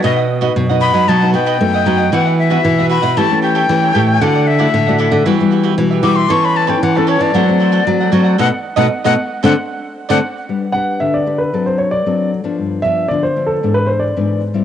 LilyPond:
<<
  \new Staff \with { instrumentName = "Flute" } { \time 4/4 \key e \minor \tempo 4 = 115 dis''8 r4 b''8 a''8 g''4. | fis''8 e''4 b''8 a''8 g''4. | fis''8 e''4. r4. d'''16 c'''16 | cis'''16 b''16 a''16 g''16 fis''16 a'16 cis''16 d''2~ d''16 |
fis''16 r8 fis''16 r16 fis''16 r8 fis''16 r4 fis''16 r8 | \key g \major r1 | r1 | }
  \new Staff \with { instrumentName = "Grand piano" } { \time 4/4 \key e \minor r1 | r1 | r1 | r1 |
r1 | \key g \major r8 fis''8 e''16 d''8 b'8 c''16 cis''16 d''8. r8 | r8 e''8 d''16 c''8 a'8 b'16 c''16 d''8. r8 | }
  \new Staff \with { instrumentName = "Cavaquinho" } { \time 4/4 \key e \minor <fis' b' dis'' fis''>16 <b' dis'' fis''>8 <fis' b' dis'' fis''>16 r16 <b' dis'' fis''>16 <fis' b' dis'' fis''>16 <b' dis'' fis''>16 <fis' b' dis'' fis''>8 <fis' b' dis'' fis''>16 <fis' b' dis'' fis''>16 r16 <b' dis'' fis''>16 <fis' b' dis'' fis''>16 <b' dis'' fis''>16 | <fis' b' e'' fis''>16 <b' e'' fis''>8 <fis' b' e'' fis''>16 r16 <b' e'' fis''>16 <fis' b' e'' fis''>16 <b' e'' fis''>16 <g' a' cis'' g''>8 <g' a' cis'' g''>16 <g' a' cis'' g''>16 r16 <a' cis'' g''>16 <g' a' cis'' g''>16 <a' cis'' g''>16 | <e' a' d'' fis''>16 <a' d'' fis''>8 <e' a' d'' fis''>16 r16 <a' d'' fis''>16 <e' a' d'' fis''>16 <a' d'' fis''>16 <fis' g' b' e''>8 <fis' g' b' e''>16 <fis' g' b' e''>16 r16 <g' b' e''>16 <fis' g' b' e''>16 <g' b' e''>16 | <a' b' cis'' a''>16 <b' cis'' a''>8 <a' b' cis'' a''>16 r16 <b' cis'' a''>16 <a' b' cis'' a''>16 <b' cis'' a''>16 <fis' a' c'' fis''>8 <fis' a' c'' fis''>16 <fis' a' c'' fis''>16 r16 <a' c'' fis''>16 <fis' a' c'' fis''>16 <a' c'' fis''>16 |
<a' b' dis''>16 r8 <a' b' dis''>16 r16 <a' b' dis''>16 r8 <a' c'' d''>16 r4 <a' c'' d''>16 r8 | \key g \major r1 | r1 | }
  \new Staff \with { instrumentName = "Nylon-string guitar" } { \time 4/4 \key e \minor << { <b dis' fis'>8 r16 <b dis' fis'>8 <b dis' fis'>4 <b dis' fis'>8. <b dis' fis'>8 <b dis' fis'>16 r16 | <b e' fis'>8. <b e' fis'>8 <b e' fis'>8. <a cis' g'>16 <a cis' g'>8. <a cis' g'>8 <a cis' g'>8 | <a e' fis'>8 r16 <a e' fis'>8 <a e' fis'>8. <g b fis'>16 <g b fis'>8. <g b fis'>8 <g b fis'>8 | <b cis' a'>8. <b cis' a'>8 <b cis' a'>8. <a c' fis'>16 <a c' fis'>8. <a c' fis'>16 r16 <a c' fis'>8 |
<a b dis'>16 r8 <a b dis'>16 r16 <a b dis'>16 r8 <a c' d'>16 r4 <a c' d'>16 r8 | \key g \major <d' g' b'>16 r16 <d' g' b'>4 <d' g' b'>8 <c' d' a'>8. r16 <c' d' a'>8 r16 <f b d'>16~ | <f b d'>8 <f b d'>8 <f b d'>16 r16 <f b d'>8 <e b d'>4 <e b d'>8 r16 <g c' e'>16 | } \\ { b,4 fis,4 b,4 fis,4 | e4 b,4 e4 e4 | d4 a,4 e4 b,4 | e4 e4 fis4 fis4 |
r1 | g4 d4 fis4 fis4 | g,4 d4 gis,4 gis,4 | } >> }
  \new Staff \with { instrumentName = "Nylon-string guitar" } { \clef bass \time 4/4 \key e \minor b,4 b,8. fis16 fis8 b8 a8 fis8 | e4 e8. b,16 e4 e8 a,8 | d4 d8. d16 e4 e8 e8 | e4 e8. e16 fis4 fis8 fis8 |
b,16 r8 b,16 r16 b,16 r8 d16 r4 d16 r8 | \key g \major r1 | r1 | }
>>